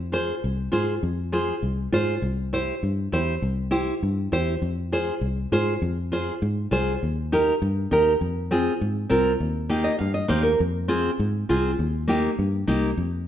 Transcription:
Already playing: F2
0.12 F4 G#4 C5
0.44 C2
0.72 G#2 F4 G#4 C5
1.03 F2
1.32 F4 G#4 C5
1.63 C2
1.92 G#2 F4 G#4 C5
2.22 C2
2.53 E4 G4 C5
2.83 G2
3.12 E2 E4 G4 C5
3.42 C2
3.71 E4 G4 C5
4.03 G2
4.32 E2 E4 G4 C5
4.62 F2
4.92 F4 G#4 C5
5.21 C2
5.52 G#2 F4 G#4 C5
5.82 F2
6.12 F4 G#4 C5
6.42 G#2
6.71 C2 F4 G#4 C5
7.03 D#2
7.32 D#4 G4 A#4
7.62 G2
7.91 D#2 D#4 G4 A#4
8.21 F2
8.51 C4 F4 G#4
8.81 G#2
9.10 C2 C4 F4 A#4
9.40 D#2
9.69 A#3 D#4 G4
9.84 D#5
9.99 G2 F5
10.14 D#5
10.28 D#2 A#3 D#4 G4 C5
10.43 A#4
10.60 F2
10.88 C4 F4 G#4
11.19 G#2
11.49 C2 C4 F4 G#4
11.79 D#2
12.08 A#3 D#4 G4
12.39 G2
12.67 C2 A#3 D#4 G4
12.97 F2

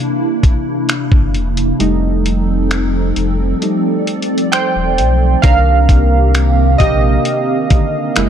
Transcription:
Already playing: C3 A#3 D4 E4
0.43 kick, closed hi-hat
0.89 finger snap, closed hi-hat
1.12 G1, kick
1.34 E1, closed hi-hat
1.57 closed hi-hat
1.79 F1 F3 G3 A3 C4 D#4 A4, closed hi-hat
2.26 closed hi-hat
2.71 finger snap, closed hi-hat
3.16 F1, closed hi-hat
3.61 G3 A3 D#4 D5, closed hi-hat
4.07 closed hi-hat
4.22 closed hi-hat
4.38 closed hi-hat
4.52 C5 G5, finger snap, closed hi-hat
4.76 D#1
4.98 B1, closed hi-hat
5.42 C2 C3 D#3 A#3 C4 D4 G4 A#4 F5, kick, closed hi-hat
5.89 kick, closed hi-hat
6.35 finger snap, closed hi-hat
6.78 A#1 G4 D#5, kick, closed hi-hat
7.25 closed hi-hat
7.70 D3 D#3 A#3, kick, closed hi-hat
8.16 F#1 E3 F#3 G#3 A#3 E4 A#4, finger snap, closed hi-hat

